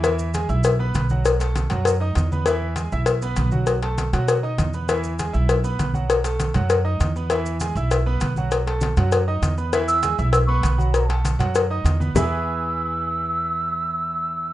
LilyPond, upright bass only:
\new Staff \with { instrumentName = "Upright bass" } { \clef bass \time 4/4 \key e \major \tempo 4 = 198 e,4. b,,4. b,,4~ | b,,4. fis,4. e,4~ | e,4. b,,4. b,,4~ | b,,4. b,4. e,4~ |
e,4. b,,4. b,,4~ | b,,4. fis,4. e,4~ | e,4. b,,4. b,,4~ | b,,4. fis,4. e,4~ |
e,4. b,,4. b,,4~ | b,,4. fis,4. e,4 | e,1~ | e,1 | }